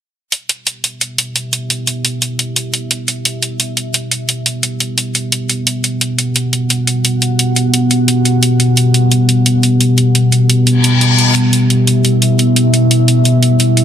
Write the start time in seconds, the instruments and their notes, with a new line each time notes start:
0.32 ambient pad B3 G4 E5, closed hi-hat
0.49 closed hi-hat
0.67 closed hi-hat
0.84 closed hi-hat
1.01 closed hi-hat
1.18 closed hi-hat
1.36 closed hi-hat
1.53 closed hi-hat
1.70 closed hi-hat
1.87 closed hi-hat
2.05 closed hi-hat
2.22 closed hi-hat
2.39 closed hi-hat
2.56 closed hi-hat
2.74 closed hi-hat
2.91 closed hi-hat
3.08 closed hi-hat
3.25 closed hi-hat
3.43 closed hi-hat
3.60 closed hi-hat
3.77 closed hi-hat
3.94 closed hi-hat
4.11 closed hi-hat
4.29 closed hi-hat
4.46 closed hi-hat
4.63 closed hi-hat
4.80 closed hi-hat
4.98 closed hi-hat
5.15 closed hi-hat
5.32 closed hi-hat
5.49 closed hi-hat
5.67 closed hi-hat
5.84 ambient pad F#5, closed hi-hat
6.01 closed hi-hat
6.18 closed hi-hat
6.36 closed hi-hat
6.53 closed hi-hat
6.70 closed hi-hat
6.87 closed hi-hat
7.05 closed hi-hat
7.22 closed hi-hat
7.39 closed hi-hat
7.56 closed hi-hat
7.74 closed hi-hat
7.91 closed hi-hat
8.08 closed hi-hat
8.25 closed hi-hat
8.43 closed hi-hat
8.60 closed hi-hat
8.77 closed hi-hat
8.94 closed hi-hat
9.12 closed hi-hat
9.29 closed hi-hat
9.46 closed hi-hat
9.63 closed hi-hat
9.81 closed hi-hat
9.98 closed hi-hat
10.15 closed hi-hat
10.32 closed hi-hat
10.50 closed hi-hat
10.67 closed hi-hat, reverse cymbal
10.84 closed hi-hat
11.01 closed hi-hat
11.18 closed hi-hat
11.36 ambient pad E5, closed hi-hat
11.53 closed hi-hat
11.70 closed hi-hat
11.87 closed hi-hat
12.05 closed hi-hat
12.22 closed hi-hat
12.39 closed hi-hat
12.56 closed hi-hat
12.74 closed hi-hat
12.91 closed hi-hat
13.08 closed hi-hat
13.25 closed hi-hat
13.43 closed hi-hat
13.60 closed hi-hat
13.77 closed hi-hat